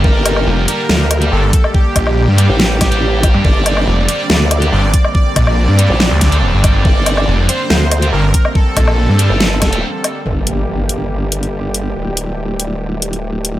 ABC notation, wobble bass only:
X:1
M:4/4
L:1/16
Q:1/4=141
K:Gm
V:1 name="Wobble bass" clef=bass
G,,,4 z4 D,,4 z4 | z6 z A,,,8 z | G,,,4 z4 D,,4 z4 | z6 z B,,,2 z6 z |
G,,,4 z4 D,,4 z4 | z6 z G,,,4- G,,, z4 | G,,,16 | D,,,16 |]